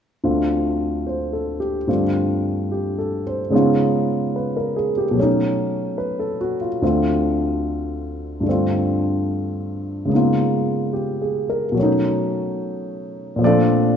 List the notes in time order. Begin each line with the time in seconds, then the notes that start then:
0.24 D2 D3 A3 C4 F4
1.07 C5
1.33 A4
1.60 G4
1.87 G2 D3 A3 C4 F4
2.72 G4
2.99 A4
3.27 C5
3.50 C#3 G#3 B3 C#4 D#4
3.55 F4
4.36 B4
4.57 A#4
4.76 G#4
4.98 G4
5.11 B2 F#3
5.17 A3 C#4
5.23 D#4
5.98 B4
6.19 A4
6.41 F#4
6.61 F4
6.82 D2 D3 A3 C4 F4
8.40 G2 D3
8.46 A3 C4
8.51 F4
10.05 C#3 G#3
10.10 A#3 B3
10.14 D#4 F4
10.93 G4
11.22 G#4
11.50 A#4
11.72 B2 F#3
11.77 A3 C#4
11.83 D#4
13.36 A#2 F3
13.41 A3 C4 D5
13.46 D4 F4 A4